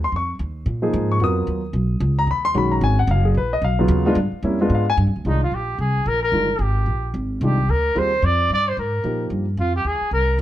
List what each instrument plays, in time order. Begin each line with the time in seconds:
Already playing: upright bass D#2
0.04 grand piano C6
0.12 upright bass F2
0.16 grand piano C#6
0.39 upright bass D#2
0.66 upright bass A#2
0.82 grand piano F3 A#3 D#4 G#4
0.93 upright bass G#2
1.12 grand piano C#6
1.20 upright bass F2, grand piano F#3 B3 F4 A#4 D#6
1.47 upright bass D#2
1.73 upright bass B1
2.00 upright bass C#2
2.19 grand piano A#5
2.27 upright bass D#2
2.31 grand piano B5
2.45 grand piano C6
2.54 upright bass B1, grand piano D#3 G#3 C#4 F#4 B5
2.72 grand piano A#5
2.81 upright bass G#1, grand piano G#5
2.99 grand piano F#5
3.07 upright bass F#1, grand piano F5
3.25 grand piano G#4
3.35 upright bass A#1, grand piano B4
3.53 grand piano D#5
3.62 upright bass B1, grand piano F5
3.79 grand piano C#3 F#3 B3 F4
3.88 upright bass D#2
4.06 grand piano G#3 B3 D4 F4
4.15 upright bass G2
4.32 muted upright bass stroke
4.43 upright bass F2, grand piano G3 A#3 C#4 E4
4.61 grand piano G#3 B3 D4 F4
4.70 upright bass G#2
4.75 grand piano F5
4.90 grand piano G#5
4.97 upright bass G2
5.07 upright bass F2
5.16 upright bass D2
5.25 upright bass C2, grand piano D#3 G#3 D4 F4, trumpet D#4
5.43 trumpet F4
5.51 upright bass A#1, trumpet G4
5.78 upright bass C2, trumpet G#4
6.06 upright bass A#1, trumpet A#4
6.23 trumpet A#4
6.32 upright bass G1, grand piano D#3 G#3 D4 F4
6.59 upright bass G#1, trumpet G4
6.86 upright bass A#1
7.14 upright bass G#1
7.41 upright bass C2, grand piano D#3 G#3 D4 F4, trumpet G4
7.68 upright bass D2, trumpet A#4
7.95 upright bass D#2, grand piano G3 C4 F4 G#4, trumpet C5
8.22 upright bass F2, trumpet D5
8.49 upright bass G2, trumpet D5
8.68 trumpet C5
8.77 upright bass G#2, trumpet A#4
9.04 upright bass A#2, grand piano F3 A#3 D#4 G4
9.30 upright bass G2
9.57 upright bass F2, trumpet F4
9.76 trumpet G4
9.84 upright bass D#2, trumpet G#4
10.01 muted upright bass stroke
10.11 upright bass C2, trumpet A#4
10.39 upright bass G#1